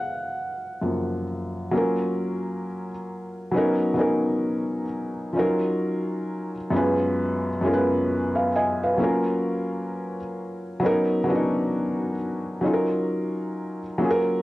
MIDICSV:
0, 0, Header, 1, 2, 480
1, 0, Start_track
1, 0, Key_signature, 6, "major"
1, 0, Tempo, 909091
1, 908, Time_signature, 4, 2, 24, 8
1, 7614, End_track
2, 0, Start_track
2, 0, Title_t, "Felt piano"
2, 0, Program_c, 0, 0
2, 0, Control_c, 0, 64, 127
2, 0, Note_on_c, 0, 77, 88
2, 0, Note_on_c, 0, 78, 76
2, 430, Note_on_c, 0, 42, 56
2, 434, Note_on_c, 0, 53, 52
2, 437, Note_on_c, 0, 58, 55
2, 646, Note_off_c, 0, 78, 0
2, 888, Note_off_c, 0, 42, 0
2, 890, Note_off_c, 0, 53, 0
2, 891, Note_off_c, 0, 58, 0
2, 905, Note_on_c, 0, 54, 89
2, 914, Note_on_c, 0, 58, 78
2, 916, Control_c, 0, 64, 0
2, 921, Note_off_c, 0, 77, 0
2, 921, Note_on_c, 0, 61, 68
2, 930, Note_on_c, 0, 65, 69
2, 937, Note_on_c, 0, 70, 89
2, 1021, Control_c, 0, 64, 127
2, 1523, Note_off_c, 0, 54, 0
2, 1528, Note_off_c, 0, 58, 0
2, 1531, Note_off_c, 0, 61, 0
2, 1535, Note_off_c, 0, 65, 0
2, 1539, Note_off_c, 0, 70, 0
2, 1856, Note_on_c, 0, 54, 86
2, 1863, Note_on_c, 0, 59, 82
2, 1871, Note_on_c, 0, 61, 83
2, 1875, Control_c, 0, 64, 0
2, 1881, Note_on_c, 0, 63, 83
2, 1888, Note_on_c, 0, 70, 94
2, 1958, Control_c, 0, 64, 127
2, 2062, Note_off_c, 0, 54, 0
2, 2066, Note_off_c, 0, 59, 0
2, 2070, Note_off_c, 0, 61, 0
2, 2075, Note_off_c, 0, 63, 0
2, 2078, Note_off_c, 0, 70, 0
2, 2081, Note_on_c, 0, 54, 79
2, 2090, Note_on_c, 0, 59, 73
2, 2099, Note_on_c, 0, 61, 73
2, 2106, Note_on_c, 0, 63, 78
2, 2115, Note_on_c, 0, 70, 91
2, 2547, Note_off_c, 0, 54, 0
2, 2552, Note_off_c, 0, 59, 0
2, 2556, Note_off_c, 0, 61, 0
2, 2560, Note_off_c, 0, 63, 0
2, 2564, Note_off_c, 0, 70, 0
2, 2813, Note_on_c, 0, 53, 66
2, 2820, Note_on_c, 0, 61, 68
2, 2829, Note_on_c, 0, 63, 70
2, 2835, Control_c, 0, 64, 0
2, 2837, Note_on_c, 0, 65, 78
2, 2846, Note_on_c, 0, 70, 103
2, 2847, Note_on_c, 0, 54, 79
2, 2861, Note_off_c, 0, 53, 0
2, 2938, Control_c, 0, 64, 127
2, 3440, Note_off_c, 0, 61, 0
2, 3445, Note_off_c, 0, 63, 0
2, 3449, Note_off_c, 0, 65, 0
2, 3453, Note_off_c, 0, 70, 0
2, 3454, Note_off_c, 0, 54, 0
2, 3539, Note_on_c, 0, 42, 92
2, 3547, Note_on_c, 0, 56, 84
2, 3553, Note_on_c, 0, 59, 82
2, 3556, Control_c, 0, 64, 0
2, 3558, Note_on_c, 0, 61, 79
2, 3566, Note_on_c, 0, 65, 87
2, 3572, Note_on_c, 0, 71, 99
2, 3663, Control_c, 0, 64, 127
2, 3944, Note_off_c, 0, 42, 0
2, 3948, Note_off_c, 0, 56, 0
2, 3951, Note_off_c, 0, 59, 0
2, 3954, Note_off_c, 0, 61, 0
2, 3958, Note_off_c, 0, 65, 0
2, 3961, Note_off_c, 0, 71, 0
2, 4020, Note_on_c, 0, 42, 76
2, 4026, Note_on_c, 0, 56, 71
2, 4031, Note_on_c, 0, 59, 72
2, 4039, Note_on_c, 0, 61, 81
2, 4046, Note_on_c, 0, 65, 79
2, 4052, Note_on_c, 0, 70, 70
2, 4080, Note_off_c, 0, 70, 0
2, 4085, Note_on_c, 0, 71, 99
2, 4297, Note_off_c, 0, 71, 0
2, 4411, Note_on_c, 0, 77, 72
2, 4413, Note_on_c, 0, 71, 61
2, 4477, Note_off_c, 0, 42, 0
2, 4480, Note_off_c, 0, 56, 0
2, 4483, Note_off_c, 0, 59, 0
2, 4486, Note_off_c, 0, 61, 0
2, 4490, Note_off_c, 0, 65, 0
2, 4504, Note_off_c, 0, 77, 0
2, 4505, Note_off_c, 0, 71, 0
2, 4518, Note_on_c, 0, 80, 73
2, 4520, Note_on_c, 0, 75, 70
2, 4647, Note_off_c, 0, 80, 0
2, 4648, Note_off_c, 0, 75, 0
2, 4663, Note_on_c, 0, 77, 65
2, 4665, Note_on_c, 0, 71, 70
2, 4738, Note_on_c, 0, 54, 77
2, 4746, Note_on_c, 0, 58, 83
2, 4754, Control_c, 0, 64, 0
2, 4755, Note_on_c, 0, 61, 87
2, 4762, Note_on_c, 0, 65, 78
2, 4770, Note_on_c, 0, 70, 92
2, 4860, Control_c, 0, 64, 127
2, 4885, Note_off_c, 0, 71, 0
2, 4885, Note_off_c, 0, 77, 0
2, 5360, Note_off_c, 0, 54, 0
2, 5364, Note_off_c, 0, 58, 0
2, 5368, Note_off_c, 0, 61, 0
2, 5371, Note_off_c, 0, 65, 0
2, 5375, Note_off_c, 0, 70, 0
2, 5701, Note_on_c, 0, 54, 93
2, 5708, Note_on_c, 0, 59, 89
2, 5713, Control_c, 0, 64, 0
2, 5716, Note_on_c, 0, 61, 85
2, 5725, Note_on_c, 0, 63, 90
2, 5733, Note_on_c, 0, 70, 113
2, 5814, Control_c, 0, 64, 127
2, 5905, Note_off_c, 0, 54, 0
2, 5908, Note_off_c, 0, 59, 0
2, 5912, Note_off_c, 0, 61, 0
2, 5917, Note_off_c, 0, 63, 0
2, 5921, Note_off_c, 0, 70, 0
2, 5934, Note_on_c, 0, 54, 89
2, 5941, Note_on_c, 0, 59, 82
2, 5950, Note_on_c, 0, 61, 76
2, 5958, Note_on_c, 0, 62, 67
2, 5966, Note_on_c, 0, 66, 90
2, 5993, Note_off_c, 0, 62, 0
2, 5993, Note_on_c, 0, 63, 85
2, 6394, Note_off_c, 0, 54, 0
2, 6397, Note_off_c, 0, 59, 0
2, 6402, Note_off_c, 0, 61, 0
2, 6410, Note_off_c, 0, 66, 0
2, 6423, Note_off_c, 0, 63, 0
2, 6658, Note_on_c, 0, 54, 79
2, 6665, Note_on_c, 0, 61, 66
2, 6671, Note_on_c, 0, 63, 72
2, 6674, Control_c, 0, 64, 0
2, 6682, Note_on_c, 0, 65, 72
2, 6689, Note_on_c, 0, 69, 72
2, 6719, Note_off_c, 0, 69, 0
2, 6723, Note_on_c, 0, 70, 92
2, 6777, Control_c, 0, 64, 127
2, 7279, Note_off_c, 0, 54, 0
2, 7283, Note_off_c, 0, 61, 0
2, 7286, Note_off_c, 0, 63, 0
2, 7291, Note_off_c, 0, 65, 0
2, 7312, Note_off_c, 0, 70, 0
2, 7382, Note_on_c, 0, 54, 96
2, 7389, Note_on_c, 0, 58, 73
2, 7394, Control_c, 0, 64, 0
2, 7398, Note_on_c, 0, 61, 75
2, 7406, Note_on_c, 0, 65, 75
2, 7414, Note_on_c, 0, 68, 76
2, 7441, Note_off_c, 0, 68, 0
2, 7448, Note_on_c, 0, 70, 112
2, 7484, Control_c, 0, 64, 127
2, 7614, Note_off_c, 0, 54, 0
2, 7614, Note_off_c, 0, 58, 0
2, 7614, Note_off_c, 0, 61, 0
2, 7614, Note_off_c, 0, 65, 0
2, 7614, Note_off_c, 0, 70, 0
2, 7614, End_track
0, 0, End_of_file